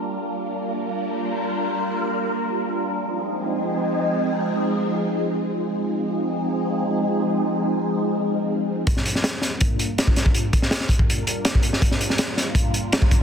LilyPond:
<<
  \new Staff \with { instrumentName = "String machine" } { \time 4/4 \key g \phrygian \tempo 4 = 163 <g bes d' f' bes'>1~ | <g bes d' f' bes'>1 | <f aes c' ees' aes'>1~ | <f aes c' ees' aes'>1 |
<f aes c' ees' aes'>1~ | <f aes c' ees' aes'>1 | r1 | r4. <g bes d' f' bes'>2~ <g bes d' f' bes'>8 |
r1 | }
  \new Staff \with { instrumentName = "808-style bass" } { \clef bass \time 4/4 \key g \phrygian r1 | r1 | r1 | r1 |
r1 | r1 | g,,16 r16 g,,4 d,,4 f,,16 r4 r16 | r8 g,,4 r2 r16 g,,16 |
g,,16 r16 g,,4 r4 f,,16 r4 r16 | }
  \new DrumStaff \with { instrumentName = "Drums" } \drummode { \time 4/4 r4 r4 r4 r4 | r4 r4 r4 r4 | r4 r4 r4 r4 | r4 r4 r4 r4 |
r4 r4 r4 r4 | r4 r4 r4 r4 | <hh bd>16 sn16 hh16 sn16 <hh sn>8 <hh sn>8 <hh bd>8 hh8 <hh sn>16 bd16 <hh sn>16 bd16 | hh8 <hh bd>16 sn16 <hh sn>16 sn16 <hh bd>16 bd16 hh8 hh8 <hh sn>16 bd16 hh16 sn16 |
<hh bd>16 sn16 hh16 sn16 <hh sn>8 <hh sn>8 <hh bd>8 hh8 <hh sn>16 bd16 <hh bd>8 | }
>>